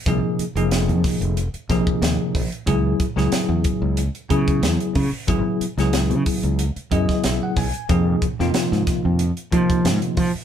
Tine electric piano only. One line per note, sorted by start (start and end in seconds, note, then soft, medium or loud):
0.06 0.43 C3 medium
0.06 0.43 F3 medium
0.06 0.43 A#3 medium
0.06 0.43 D#4 medium
0.06 0.44 G#4 medium
0.56 1.40 C3 medium
0.56 1.40 F3 medium
0.56 1.40 A#3 medium
0.56 1.40 D#4 medium
0.56 1.40 G#4 medium
1.69 2.42 C3 medium
1.69 2.42 F3 medium
1.69 2.43 A#3 medium
1.69 2.43 D#4 medium
1.69 2.43 G#4 medium
2.66 3.03 C#3 medium
2.66 3.03 F#3 medium
2.66 3.03 B3 medium
2.66 3.04 E4 medium
2.66 3.04 G#4 medium
3.16 4.00 C#3 medium
3.16 4.01 F#3 medium
3.16 4.01 B3 medium
3.16 4.01 E4 medium
3.16 4.01 G#4 medium
4.29 5.03 C#3 medium
4.29 5.03 F#3 medium
4.29 5.03 B3 medium
4.29 5.03 E4 medium
4.29 5.03 G#4 medium
5.27 5.64 C#3 medium
5.27 5.64 F#3 medium
5.27 5.65 B3 medium
5.27 5.65 E4 medium
5.27 5.65 G#4 medium
5.78 6.62 C#3 medium
5.78 6.62 F#3 medium
5.78 6.62 B3 medium
5.78 6.63 E4 medium
5.78 6.63 G#4 medium
6.91 7.64 C#3 medium
6.91 7.64 F#3 medium
6.91 7.64 B3 medium
6.91 7.65 E4 medium
6.91 7.65 G#4 medium
6.91 7.22 D#5 medium
7.24 7.40 E5 medium
7.43 7.56 F#5 medium
7.57 7.87 G#5 medium
7.89 8.25 C3 medium
7.89 8.26 F3 medium
7.89 8.26 A#3 medium
7.89 8.26 D#4 medium
7.89 8.26 G#4 medium
8.39 9.23 C3 medium
8.39 9.23 F3 medium
8.39 9.23 A#3 medium
8.39 9.24 D#4 medium
8.39 9.24 F4 medium
9.52 10.25 C3 medium
9.52 10.25 F3 medium
9.52 10.25 A#3 medium
9.52 10.25 D#4 medium
9.52 10.26 F4 medium